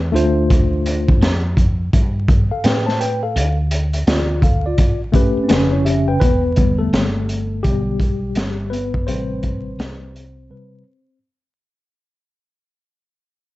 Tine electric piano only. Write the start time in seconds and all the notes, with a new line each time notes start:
0.12 A3 D4 F4 C5
2.51 A4 F5
2.64 B4 G5
2.86 C5 A5
3.00 B4 G5
3.23 A4 F5
4.08 F4 D5
4.43 A4 F5
4.66 F4 D5
5.12 A3 C#4 G4 B4
5.44 C4
5.49 C#3 C#4 B4
5.72 E4 C#5
5.85 G4 E5
6.08 B4 G5
6.20 B3 B4
6.57 D3 G3 B3
6.78 A3 A4
7.63 D3 G3 B3 G4
8.70 B3 B4
9.07 C3 G3 C4 B4 C5
10.50 C3 G3 B4